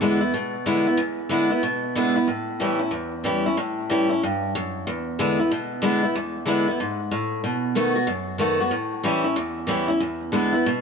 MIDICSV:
0, 0, Header, 1, 2, 480
1, 0, Start_track
1, 0, Tempo, 322754
1, 1460, Time_signature, 4, 2, 24, 8
1, 16080, End_track
2, 0, Start_track
2, 0, Title_t, "Steel-string acoustic guitar"
2, 0, Program_c, 0, 25
2, 0, Note_on_c, 0, 40, 82
2, 11, Note_on_c, 0, 50, 90
2, 23, Note_on_c, 0, 59, 93
2, 25, Note_on_c, 0, 56, 83
2, 39, Note_on_c, 0, 64, 94
2, 289, Note_off_c, 0, 64, 0
2, 306, Note_off_c, 0, 50, 0
2, 307, Note_on_c, 0, 64, 60
2, 312, Note_off_c, 0, 56, 0
2, 312, Note_off_c, 0, 59, 0
2, 334, Note_on_c, 0, 59, 47
2, 466, Note_off_c, 0, 40, 0
2, 483, Note_off_c, 0, 64, 0
2, 497, Note_off_c, 0, 59, 0
2, 503, Note_on_c, 0, 47, 87
2, 979, Note_on_c, 0, 50, 80
2, 982, Note_on_c, 0, 56, 92
2, 992, Note_on_c, 0, 59, 80
2, 996, Note_on_c, 0, 64, 95
2, 1271, Note_off_c, 0, 50, 0
2, 1272, Note_off_c, 0, 56, 0
2, 1276, Note_off_c, 0, 64, 0
2, 1277, Note_off_c, 0, 59, 0
2, 1294, Note_on_c, 0, 64, 64
2, 1318, Note_on_c, 0, 59, 51
2, 1427, Note_off_c, 0, 47, 0
2, 1449, Note_on_c, 0, 40, 87
2, 1458, Note_off_c, 0, 64, 0
2, 1470, Note_off_c, 0, 59, 0
2, 1923, Note_on_c, 0, 50, 86
2, 1943, Note_on_c, 0, 56, 94
2, 1946, Note_on_c, 0, 59, 90
2, 1955, Note_on_c, 0, 64, 94
2, 2218, Note_off_c, 0, 64, 0
2, 2225, Note_off_c, 0, 50, 0
2, 2234, Note_off_c, 0, 56, 0
2, 2236, Note_off_c, 0, 59, 0
2, 2236, Note_on_c, 0, 64, 60
2, 2255, Note_on_c, 0, 59, 50
2, 2382, Note_off_c, 0, 40, 0
2, 2411, Note_off_c, 0, 64, 0
2, 2420, Note_off_c, 0, 59, 0
2, 2424, Note_on_c, 0, 47, 82
2, 2907, Note_on_c, 0, 56, 80
2, 2909, Note_on_c, 0, 50, 74
2, 2918, Note_on_c, 0, 59, 95
2, 2930, Note_on_c, 0, 64, 94
2, 3190, Note_off_c, 0, 64, 0
2, 3198, Note_off_c, 0, 50, 0
2, 3198, Note_off_c, 0, 56, 0
2, 3203, Note_off_c, 0, 59, 0
2, 3208, Note_on_c, 0, 64, 58
2, 3235, Note_on_c, 0, 59, 52
2, 3351, Note_off_c, 0, 47, 0
2, 3378, Note_off_c, 0, 64, 0
2, 3382, Note_on_c, 0, 45, 81
2, 3391, Note_off_c, 0, 59, 0
2, 3863, Note_on_c, 0, 52, 83
2, 3868, Note_on_c, 0, 55, 93
2, 3871, Note_on_c, 0, 61, 86
2, 3888, Note_on_c, 0, 64, 104
2, 4137, Note_off_c, 0, 64, 0
2, 4154, Note_off_c, 0, 61, 0
2, 4154, Note_on_c, 0, 64, 63
2, 4156, Note_off_c, 0, 52, 0
2, 4159, Note_off_c, 0, 55, 0
2, 4172, Note_on_c, 0, 61, 51
2, 4310, Note_off_c, 0, 45, 0
2, 4328, Note_on_c, 0, 40, 82
2, 4332, Note_off_c, 0, 64, 0
2, 4341, Note_off_c, 0, 61, 0
2, 4815, Note_on_c, 0, 52, 75
2, 4822, Note_on_c, 0, 55, 85
2, 4832, Note_on_c, 0, 61, 83
2, 4848, Note_on_c, 0, 64, 103
2, 5113, Note_off_c, 0, 52, 0
2, 5117, Note_off_c, 0, 55, 0
2, 5122, Note_off_c, 0, 61, 0
2, 5130, Note_off_c, 0, 64, 0
2, 5147, Note_on_c, 0, 64, 69
2, 5170, Note_on_c, 0, 61, 55
2, 5263, Note_off_c, 0, 40, 0
2, 5309, Note_off_c, 0, 64, 0
2, 5314, Note_on_c, 0, 45, 88
2, 5320, Note_off_c, 0, 61, 0
2, 5795, Note_on_c, 0, 52, 85
2, 5798, Note_on_c, 0, 55, 91
2, 5813, Note_on_c, 0, 61, 93
2, 5816, Note_on_c, 0, 64, 101
2, 6071, Note_off_c, 0, 64, 0
2, 6083, Note_off_c, 0, 52, 0
2, 6085, Note_off_c, 0, 55, 0
2, 6089, Note_on_c, 0, 64, 61
2, 6093, Note_off_c, 0, 61, 0
2, 6123, Note_on_c, 0, 61, 51
2, 6237, Note_off_c, 0, 45, 0
2, 6261, Note_off_c, 0, 64, 0
2, 6277, Note_off_c, 0, 61, 0
2, 6297, Note_on_c, 0, 43, 89
2, 6746, Note_off_c, 0, 43, 0
2, 6769, Note_on_c, 0, 42, 91
2, 7222, Note_off_c, 0, 42, 0
2, 7243, Note_on_c, 0, 40, 83
2, 7718, Note_on_c, 0, 56, 86
2, 7721, Note_on_c, 0, 50, 90
2, 7731, Note_on_c, 0, 59, 94
2, 7736, Note_on_c, 0, 64, 103
2, 8005, Note_off_c, 0, 56, 0
2, 8007, Note_off_c, 0, 50, 0
2, 8007, Note_off_c, 0, 64, 0
2, 8011, Note_off_c, 0, 59, 0
2, 8025, Note_on_c, 0, 64, 62
2, 8038, Note_on_c, 0, 59, 50
2, 8161, Note_off_c, 0, 40, 0
2, 8188, Note_off_c, 0, 64, 0
2, 8195, Note_off_c, 0, 59, 0
2, 8202, Note_on_c, 0, 47, 89
2, 8652, Note_on_c, 0, 50, 96
2, 8667, Note_on_c, 0, 56, 95
2, 8673, Note_on_c, 0, 59, 98
2, 8682, Note_on_c, 0, 64, 100
2, 8950, Note_off_c, 0, 64, 0
2, 8952, Note_off_c, 0, 50, 0
2, 8959, Note_off_c, 0, 56, 0
2, 8962, Note_off_c, 0, 59, 0
2, 8968, Note_on_c, 0, 64, 64
2, 8998, Note_on_c, 0, 59, 52
2, 9120, Note_off_c, 0, 47, 0
2, 9139, Note_off_c, 0, 64, 0
2, 9154, Note_off_c, 0, 59, 0
2, 9154, Note_on_c, 0, 40, 87
2, 9601, Note_on_c, 0, 50, 88
2, 9615, Note_on_c, 0, 56, 98
2, 9626, Note_on_c, 0, 59, 95
2, 9635, Note_on_c, 0, 64, 97
2, 9906, Note_off_c, 0, 50, 0
2, 9912, Note_off_c, 0, 56, 0
2, 9916, Note_off_c, 0, 64, 0
2, 9918, Note_off_c, 0, 59, 0
2, 9934, Note_on_c, 0, 64, 61
2, 9961, Note_on_c, 0, 59, 48
2, 10074, Note_off_c, 0, 40, 0
2, 10102, Note_off_c, 0, 64, 0
2, 10114, Note_on_c, 0, 44, 80
2, 10115, Note_off_c, 0, 59, 0
2, 10572, Note_off_c, 0, 44, 0
2, 10581, Note_on_c, 0, 45, 84
2, 11045, Note_off_c, 0, 45, 0
2, 11060, Note_on_c, 0, 47, 76
2, 11530, Note_on_c, 0, 51, 86
2, 11536, Note_on_c, 0, 57, 85
2, 11546, Note_on_c, 0, 59, 102
2, 11555, Note_on_c, 0, 66, 100
2, 11810, Note_off_c, 0, 66, 0
2, 11828, Note_off_c, 0, 51, 0
2, 11828, Note_on_c, 0, 66, 59
2, 11831, Note_off_c, 0, 57, 0
2, 11836, Note_off_c, 0, 59, 0
2, 11864, Note_on_c, 0, 59, 45
2, 11986, Note_off_c, 0, 47, 0
2, 12001, Note_on_c, 0, 42, 85
2, 12006, Note_off_c, 0, 66, 0
2, 12025, Note_off_c, 0, 59, 0
2, 12468, Note_on_c, 0, 51, 88
2, 12484, Note_on_c, 0, 57, 92
2, 12490, Note_on_c, 0, 59, 98
2, 12500, Note_on_c, 0, 66, 102
2, 12776, Note_off_c, 0, 51, 0
2, 12776, Note_off_c, 0, 66, 0
2, 12784, Note_off_c, 0, 57, 0
2, 12787, Note_off_c, 0, 59, 0
2, 12794, Note_on_c, 0, 66, 64
2, 12810, Note_on_c, 0, 59, 48
2, 12935, Note_off_c, 0, 42, 0
2, 12951, Note_on_c, 0, 45, 79
2, 12969, Note_off_c, 0, 66, 0
2, 12977, Note_off_c, 0, 59, 0
2, 13438, Note_on_c, 0, 52, 89
2, 13445, Note_on_c, 0, 55, 88
2, 13453, Note_on_c, 0, 61, 91
2, 13468, Note_on_c, 0, 64, 101
2, 13726, Note_off_c, 0, 64, 0
2, 13739, Note_off_c, 0, 52, 0
2, 13743, Note_off_c, 0, 55, 0
2, 13744, Note_on_c, 0, 64, 64
2, 13747, Note_off_c, 0, 61, 0
2, 13763, Note_on_c, 0, 61, 42
2, 13889, Note_off_c, 0, 45, 0
2, 13921, Note_on_c, 0, 40, 84
2, 13922, Note_off_c, 0, 64, 0
2, 13932, Note_off_c, 0, 61, 0
2, 14379, Note_on_c, 0, 52, 83
2, 14392, Note_on_c, 0, 55, 84
2, 14398, Note_on_c, 0, 61, 86
2, 14408, Note_on_c, 0, 64, 94
2, 14678, Note_off_c, 0, 64, 0
2, 14689, Note_off_c, 0, 52, 0
2, 14695, Note_off_c, 0, 55, 0
2, 14696, Note_on_c, 0, 64, 70
2, 14698, Note_off_c, 0, 61, 0
2, 14726, Note_on_c, 0, 61, 50
2, 14853, Note_off_c, 0, 40, 0
2, 14877, Note_off_c, 0, 64, 0
2, 14878, Note_on_c, 0, 40, 78
2, 14892, Note_off_c, 0, 61, 0
2, 15348, Note_on_c, 0, 50, 94
2, 15358, Note_on_c, 0, 56, 87
2, 15359, Note_on_c, 0, 59, 93
2, 15373, Note_on_c, 0, 64, 95
2, 15637, Note_off_c, 0, 64, 0
2, 15652, Note_off_c, 0, 50, 0
2, 15655, Note_on_c, 0, 64, 55
2, 15658, Note_off_c, 0, 56, 0
2, 15658, Note_off_c, 0, 59, 0
2, 15677, Note_on_c, 0, 59, 48
2, 15810, Note_off_c, 0, 40, 0
2, 15836, Note_off_c, 0, 64, 0
2, 15847, Note_off_c, 0, 59, 0
2, 15859, Note_on_c, 0, 47, 85
2, 16080, Note_off_c, 0, 47, 0
2, 16080, End_track
0, 0, End_of_file